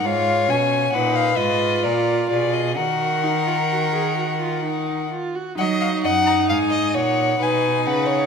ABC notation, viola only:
X:1
M:3/4
L:1/16
Q:1/4=65
K:Ebm
V:1 name="Viola"
F2 D2 E2 F6 | G2 E F G A G F E2 F G | E8 E4 |]